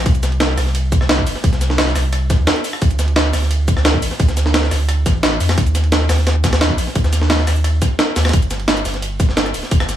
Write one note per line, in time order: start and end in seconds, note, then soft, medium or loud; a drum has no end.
0.06 0.56 C2 loud
0.06 kick loud
0.06 closed hi-hat medium
0.06 ride medium
0.15 ride soft
0.15 shaker soft
0.23 snare medium
0.23 closed hi-hat medium
0.23 ride medium
0.23 shaker medium
0.32 ride soft
0.40 snare loud
0.40 closed hi-hat medium
0.40 ride medium
0.58 1.25 C2 loud
0.58 cross-stick soft
0.58 snare soft
0.58 open hi-hat medium
0.58 ride medium
0.58 shaker medium
0.66 snare soft
0.75 closed hi-hat medium
0.75 ride medium
0.92 kick loud
0.92 closed hi-hat medium
0.92 ride medium
0.92 shaker medium
1.01 cross-stick soft
1.01 snare soft
1.09 snare loud
1.09 closed hi-hat medium
1.09 ride medium
1.18 kick medium
1.27 1.35 G1 medium
1.27 open hi-hat medium
1.27 ride medium
1.27 shaker medium
1.36 snare soft
1.44 1.94 C2 loud
1.44 kick loud
1.44 closed hi-hat medium
1.44 ride medium
1.53 snare soft
1.53 shaker soft
1.61 snare soft
1.61 closed hi-hat medium
1.61 ride medium
1.61 shaker medium
1.70 snare soft
1.78 snare loud
1.78 closed hi-hat medium
1.78 ride medium
1.87 snare medium
1.95 2.32 C2 loud
1.95 cross-stick soft
1.95 snare soft
1.95 open hi-hat medium
1.95 shaker medium
2.12 cross-stick soft
2.12 closed hi-hat medium
2.12 ride medium
2.30 2.40 G1 loud
2.30 kick loud
2.30 snare soft
2.30 closed hi-hat medium
2.30 ride medium
2.30 shaker medium
2.39 2.46 F2 loud
2.47 snare loud
2.47 closed hi-hat medium
2.47 ride medium
2.56 ride soft
2.64 open hi-hat medium
2.64 ride medium
2.64 shaker medium
2.73 cross-stick soft
2.82 3.32 D2 loud
2.82 kick loud
2.82 closed hi-hat medium
2.82 ride medium
2.91 ride soft
2.91 shaker soft
2.99 snare medium
2.99 closed hi-hat medium
2.99 ride medium
2.99 shaker medium
3.08 ride soft
3.16 snare loud
3.16 closed hi-hat medium
3.16 ride medium
3.33 4.01 D2 loud
3.33 cross-stick soft
3.33 snare soft
3.33 open hi-hat medium
3.33 ride medium
3.33 shaker medium
3.42 snare soft
3.51 closed hi-hat medium
3.51 ride medium
3.68 kick loud
3.68 closed hi-hat medium
3.68 ride medium
3.68 shaker medium
3.77 cross-stick soft
3.77 snare soft
3.85 snare loud
3.85 closed hi-hat medium
3.85 ride medium
3.94 kick medium
4.02 4.10 A1 medium
4.02 open hi-hat medium
4.02 ride medium
4.02 shaker medium
4.11 snare soft
4.20 4.70 D2 loud
4.20 kick loud
4.20 closed hi-hat medium
4.20 ride medium
4.28 snare soft
4.28 shaker soft
4.37 snare soft
4.37 closed hi-hat medium
4.37 ride medium
4.37 shaker medium
4.46 snare soft
4.54 snare loud
4.54 closed hi-hat medium
4.54 ride medium
4.63 snare medium
4.71 5.04 D2 loud
4.71 cross-stick soft
4.71 snare soft
4.71 open hi-hat medium
4.71 shaker medium
4.89 cross-stick soft
4.89 closed hi-hat medium
4.89 ride medium
5.06 5.39 A1 loud
5.06 kick loud
5.06 snare soft
5.06 closed hi-hat medium
5.06 ride medium
5.06 shaker medium
5.23 snare loud
5.23 closed hi-hat medium
5.23 ride medium
5.40 5.56 F2 medium
5.40 open hi-hat medium
5.40 ride medium
5.40 shaker medium
5.49 cross-stick soft
5.49 snare loud
5.49 ride medium
5.58 6.08 D#2 loud
5.58 kick loud
5.58 closed hi-hat medium
5.58 ride medium
5.66 ride soft
5.66 shaker soft
5.75 snare medium
5.75 closed hi-hat loud
5.75 ride medium
5.75 shaker medium
5.84 ride soft
5.92 snare loud
5.92 closed hi-hat medium
5.92 ride medium
6.09 6.77 D#2 loud
6.09 cross-stick soft
6.09 snare loud
6.09 open hi-hat medium
6.09 ride medium
6.09 shaker medium
6.18 snare soft
6.27 snare loud
6.27 closed hi-hat medium
6.27 ride medium
6.44 kick loud
6.44 snare loud
6.44 closed hi-hat loud
6.44 ride medium
6.44 shaker medium
6.53 cross-stick soft
6.53 snare loud
6.53 ride medium
6.61 snare loud
6.61 closed hi-hat medium
6.61 ride medium
6.70 kick medium
6.78 6.86 A#1 medium
6.78 open hi-hat medium
6.78 ride medium
6.78 shaker medium
6.87 snare soft
6.95 7.46 D#2 loud
6.95 kick loud
6.95 closed hi-hat medium
6.95 ride medium
7.04 snare soft
7.04 shaker soft
7.13 snare soft
7.13 closed hi-hat loud
7.13 ride medium
7.13 shaker medium
7.22 snare soft
7.30 snare loud
7.30 closed hi-hat medium
7.30 ride medium
7.39 snare medium
7.47 7.80 D#2 loud
7.47 cross-stick soft
7.47 snare soft
7.47 open hi-hat medium
7.47 shaker medium
7.56 shaker soft
7.64 cross-stick soft
7.64 closed hi-hat medium
7.64 ride medium
7.82 kick loud
7.82 snare soft
7.82 closed hi-hat loud
7.82 ride medium
7.82 shaker medium
7.99 snare loud
7.99 closed hi-hat medium
8.16 8.32 D#2 loud
8.16 snare loud
8.16 open hi-hat medium
8.16 ride medium
8.16 shaker medium
8.25 cross-stick medium
8.25 snare medium
8.25 ride medium
8.29 snare medium
8.29 ride medium
8.33 8.84 G1 loud
8.33 kick loud
8.33 closed hi-hat loud
8.33 ride medium
8.42 ride soft
8.42 shaker soft
8.51 snare medium
8.51 closed hi-hat medium
8.51 ride medium
8.51 shaker medium
8.60 ride soft
8.68 snare loud
8.68 closed hi-hat loud
8.68 ride medium
8.77 closed hi-hat soft
8.77 shaker soft
8.85 9.53 G1 loud
8.85 snare soft
8.85 open hi-hat medium
8.85 ride medium
8.85 shaker medium
8.94 snare soft
8.94 closed hi-hat soft
9.02 closed hi-hat loud
9.02 ride medium
9.20 kick loud
9.20 closed hi-hat medium
9.20 ride medium
9.20 shaker medium
9.29 snare soft
9.37 snare loud
9.37 closed hi-hat loud
9.37 ride medium
9.46 cross-stick soft
9.46 shaker soft
9.54 9.62 D1 medium
9.54 open hi-hat medium
9.54 ride medium
9.54 shaker medium
9.63 snare soft
9.71 9.97 G1 loud
9.71 kick loud
9.71 closed hi-hat loud
9.71 ride medium
9.80 cross-stick medium
9.80 snare soft
9.80 shaker soft
9.89 snare soft
9.89 closed hi-hat medium
9.89 ride medium
9.89 shaker medium